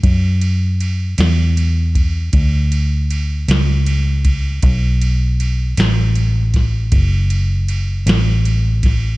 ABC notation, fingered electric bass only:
X:1
M:12/8
L:1/8
Q:3/8=52
K:Bm
V:1 name="Fingered electric bass" clef=bass
F,,3 E,,3 D,,3 C,,3 | B,,,3 A,,,3 F,,,3 A,,,3 |]